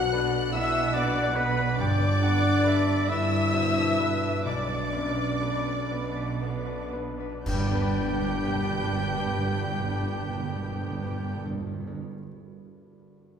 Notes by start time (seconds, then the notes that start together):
Already playing: B1 B2 F#3 D4 F#4 C5 D5 F#5 F#6
0.11 B3 D4 A4 B4 D5
0.32 D4 D5
0.52 B1 B2 B3 D4 E4 B4 E5 F#5 E6
0.73 D4 D5
0.94 B3 D4 A4 B4 D5 D6
1.15 D4 D5
1.36 B3 D4 B4 B5
1.57 D4 D5 B5
1.77 G1 G2 B3 D4 B4 D5 G5 D6
1.99 D3 D4 D5
2.21 D3 B3 B4 F#5
2.43 D4 D5
2.64 B3 D4 A4 B4 E5
2.87 D4 D5
3.08 G1 G2 B3 D4 E4 B4 D5 E5 E6
3.31 D4 D5
3.53 B2 B3 A4 B4 C5
3.76 D4 B4 D5
3.98 B3 D4 B4
4.21 D4 B4 D5
4.44 B1 B2 B3 D4 B4 D5 D6
4.67 F#3 D4 D5
4.92 F#2 B3 B4
5.16 D4 B4 D5
5.40 B3 D4 A4 B4
5.66 D4 B4 D5
5.90 B1 B2 B3 D4 B4
6.16 D4 B4 D5
6.41 B3 A4 B4
6.66 D4 B4 D5
6.92 B3 D4 B4
7.19 D4 B4 D5
7.46 G1 G2 G3 D4 G4 B4 G5 G6, concert bass drum, crash
7.54 G2 G3
7.61 G2 B3
7.68 G2 D4
7.75 G2 B4
7.82 G2 D5
7.88 G2
7.95 G2
8.01 G2
8.08 G2
8.14 G2
8.21 G2
8.28 G2
8.35 G2
8.42 G2
8.48 G2
8.55 G2
8.62 G2
8.70 G2
8.77 G2
8.84 G2
8.91 G2
8.98 G2
9.04 G2
9.11 G2
9.18 G2
9.25 G2
9.31 G2
9.38 G2
9.45 G2
9.52 G2
9.59 G2
9.66 G2
9.73 G2
9.79 G2
9.86 G2
9.93 G2
10.00 G2
10.07 G2
10.15 G2
10.22 G2
10.29 G2
10.35 G2
10.42 G2
10.49 G2
10.55 G2
10.63 G2
10.69 G2
10.76 G2
10.83 G2
10.90 G2
10.97 G2
11.04 G2
11.11 G2
11.18 G2
11.25 G2
11.32 G2
11.39 G2
11.46 G2
11.53 G2
11.59 G2
11.67 G2
11.73 G2
11.80 G2
11.87 G2
11.94 G2